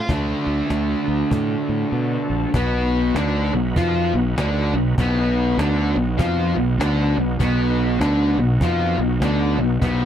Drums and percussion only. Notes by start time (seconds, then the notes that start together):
0.09 cajon bass
0.70 cajon slap
1.31 cajon bass
2.54 cajon bass
3.16 cajon slap
3.76 cajon bass
4.38 cajon slap
4.98 cajon bass
5.59 cajon slap
6.19 cajon bass
6.81 cajon slap
7.18 cajon slap
7.40 cajon bass
8.01 cajon slap
8.61 cajon bass
9.22 cajon slap
9.82 cajon bass